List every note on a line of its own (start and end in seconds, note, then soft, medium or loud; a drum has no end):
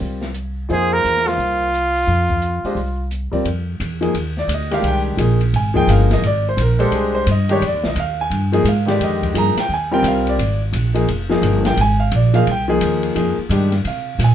0.00 0.66 C2 medium
0.00 0.25 G3 medium
0.00 0.26 C4 medium
0.00 0.26 F4 medium
0.00 0.26 A#4 medium
0.00 0.26 D5 medium
0.22 snare soft
0.34 closed hi-hat medium
0.69 1.01 F2 medium
0.69 1.65 A#3 soft
0.69 1.65 D#4 medium
0.69 1.65 F4 medium
0.69 1.66 G#4 medium
0.69 0.95 G#4 loud
0.69 1.66 C5 medium
0.69 open hi-hat soft
0.93 1.29 A#4 loud
1.05 1.36 E2 medium
1.05 closed hi-hat soft
1.17 snare soft
1.28 3.12 F4 medium
1.28 snare soft
1.28 open hi-hat soft
1.38 2.04 C2 medium
1.38 open hi-hat soft
1.74 closed hi-hat medium
1.96 open hi-hat soft
2.07 2.60 F2 medium
2.07 open hi-hat soft
2.30 kick medium
2.42 closed hi-hat medium
2.64 2.76 G#3 medium
2.64 2.76 D4 medium
2.64 2.76 G4 medium
2.64 2.76 C5 medium
2.64 2.76 D#5 medium
2.64 muted upright bass stroke soft
2.64 open hi-hat soft
2.75 3.29 C2 medium
2.75 open hi-hat soft
3.11 closed hi-hat medium
3.31 3.45 G3 medium
3.31 3.45 C4 medium
3.31 3.46 F4 soft
3.31 3.46 A#4 medium
3.31 3.45 D5 medium
3.31 muted upright bass stroke soft
3.31 kick soft
3.31 open hi-hat soft
3.45 3.79 F2 medium
3.45 ride medium
3.80 4.13 E2 medium
3.80 hi-hat pedal medium
3.80 ride medium
4.01 4.13 F3 medium
4.01 4.13 A#3 medium
4.01 4.13 D#4 medium
4.01 4.14 G#4 medium
4.01 ride soft
4.14 4.47 D#2 medium
4.14 ride medium
4.37 4.50 D5 medium
4.37 snare soft
4.48 4.82 D2 medium
4.48 hi-hat pedal medium
4.48 ride medium
4.54 4.73 D#5 medium
4.71 5.16 D#3 medium
4.71 5.16 G#3 medium
4.71 5.17 D4 medium
4.71 5.17 G4 medium
4.71 4.85 F5 medium
4.71 snare soft
4.71 ride soft
4.83 5.17 C2 medium
4.83 ride medium
4.88 5.00 G5 medium
5.17 5.52 A#1 medium
5.17 5.38 F3 medium
5.17 5.39 A#3 soft
5.17 5.39 D#4 medium
5.17 5.39 G#4 medium
5.17 hi-hat pedal soft
5.17 ride medium
5.41 ride soft
5.53 5.87 G#1 medium
5.53 5.76 G#5 medium
5.53 ride medium
5.74 6.20 F3 medium
5.74 6.20 A#3 medium
5.74 6.20 D#4 medium
5.74 6.20 G#4 medium
5.74 5.89 G5 medium
5.74 kick medium
5.87 6.21 G1 medium
5.87 6.11 F5 medium
5.87 hi-hat pedal medium
5.87 ride medium
6.11 6.24 D#5 medium
6.11 snare soft
6.11 ride soft
6.22 6.56 G#1 medium
6.22 ride medium
6.27 6.46 D5 medium
6.49 6.59 C5 medium
6.57 6.90 A#1 medium
6.57 hi-hat pedal medium
6.57 ride medium
6.61 6.81 A#4 medium
6.79 7.24 G#3 medium
6.79 7.24 D4 medium
6.79 7.25 G4 medium
6.79 6.92 A4 medium
6.79 7.13 C5 medium
6.79 ride soft
6.91 7.25 C2 medium
6.91 ride medium
6.95 7.15 G#4 medium
7.15 7.27 C5 medium
7.27 7.60 G2 medium
7.27 hi-hat pedal medium
7.27 ride medium
7.31 7.51 D#5 medium
7.49 7.61 D#3 medium
7.49 7.60 G#3 medium
7.49 7.61 D4 medium
7.49 7.61 G4 medium
7.49 7.63 C#5 medium
7.49 ride soft
7.61 7.74 F2 medium
7.61 ride medium
7.67 7.86 D5 medium
7.74 7.84 D#2 medium
7.84 7.95 C2 medium
7.84 snare medium
7.88 7.98 D#5 medium
7.95 8.29 D#2 medium
7.95 hi-hat pedal medium
7.95 ride medium
8.00 8.19 F5 medium
8.21 8.52 G#5 medium
8.30 8.64 G2 medium
8.30 ride medium
8.52 8.64 F3 medium
8.52 8.64 A#3 medium
8.52 8.64 D#4 medium
8.52 8.65 G#4 medium
8.52 ride soft
8.64 8.98 G#2 medium
8.64 hi-hat pedal medium
8.64 ride medium
8.68 8.88 F5 medium
8.86 9.32 D3 medium
8.86 9.31 D#3 medium
8.86 9.32 G#3 medium
8.86 9.32 G4 medium
8.86 snare soft
8.86 ride soft
8.90 9.01 D5 medium
9.00 9.34 F2 medium
9.00 9.34 D#5 medium
9.00 ride medium
9.23 kick soft
9.23 ride soft
9.34 9.55 G2 medium
9.34 9.54 F3 medium
9.34 9.55 A#3 medium
9.34 9.55 D#4 soft
9.34 9.55 G#4 medium
9.34 hi-hat pedal medium
9.34 ride medium
9.38 9.58 A#5 loud
9.55 muted upright bass stroke soft
9.55 snare soft
9.55 ride medium
9.60 9.71 G5 medium
9.69 10.02 D#2 medium
9.74 9.93 G#5 medium
9.91 10.36 G3 medium
9.91 10.37 C4 medium
9.91 10.37 F4 medium
9.91 10.37 A#4 medium
9.91 10.05 G5 medium
10.03 10.37 C2 medium
10.03 hi-hat pedal medium
10.03 ride medium
10.08 10.27 F5 medium
10.27 10.60 D5 medium
10.27 ride soft
10.38 10.72 G#1 medium
10.38 ride medium
10.73 11.07 A#1 medium
10.73 hi-hat pedal medium
10.73 ride medium
10.94 11.06 F3 medium
10.94 11.06 A#3 medium
10.94 11.06 D#4 medium
10.94 11.07 G#4 medium
10.94 ride soft
11.08 11.41 F1 medium
11.08 ride medium
11.29 11.75 F3 medium
11.29 11.75 A#3 medium
11.29 11.75 D#4 medium
11.29 11.75 G#4 medium
11.29 snare medium
11.42 11.76 G1 medium
11.42 hi-hat pedal medium
11.42 ride medium
11.65 11.78 G5 medium
11.65 snare medium
11.65 ride soft
11.77 12.11 G#1 medium
11.77 ride medium
11.81 12.01 G#5 loud
12.00 12.12 F5 medium
12.12 12.45 A#1 medium
12.12 hi-hat pedal medium
12.12 ride medium
12.16 12.35 D5 medium
12.34 12.45 F3 medium
12.34 12.45 A#3 medium
12.34 12.46 D#4 medium
12.34 12.46 G#4 medium
12.34 12.47 F5 loud
12.34 ride soft
12.47 12.80 C2 medium
12.47 ride medium
12.52 12.63 G5 medium
12.68 13.13 F3 medium
12.68 13.13 A#3 medium
12.68 13.14 D#4 medium
12.68 13.14 G#4 medium
12.81 13.15 D#2 medium
12.81 hi-hat pedal medium
12.81 ride medium
13.03 ride medium
13.15 13.36 F2 medium
13.15 13.36 F3 medium
13.15 13.36 A#3 medium
13.15 13.36 D#4 medium
13.15 13.36 G#4 medium
13.15 ride medium
13.38 muted upright bass stroke soft
13.49 13.84 G2 medium
13.49 13.70 D#3 medium
13.49 13.70 G#3 soft
13.49 13.71 D4 soft
13.49 13.71 G4 medium
13.49 hi-hat pedal medium
13.49 ride medium
13.72 snare soft
13.72 ride soft
13.85 14.18 C3 medium
13.85 14.19 F5 medium
13.85 ride medium
14.19 14.35 A#2 medium
14.19 snare soft
14.19 hi-hat pedal medium
14.19 ride medium
14.24 14.35 G#5 medium